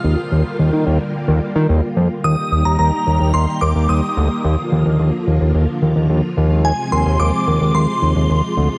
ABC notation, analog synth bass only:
X:1
M:4/4
L:1/16
Q:1/4=109
K:Eb
V:1 name="Analog synth bass" clef=bass
E,, z E,, z E,, E, E,, z2 E,, z E, E,, z F,, z | E,, z E,, E,, E,, z E,, E,, E,, z E,, E,, E,, z D,, z | E,, z E,, E,, E,, z E,, E,, E,, z E,, E,, E,, z E,,2- | E,, z E,, E,, E,, z E,, E,, E,, z E,, E,, E,, z D,, z |]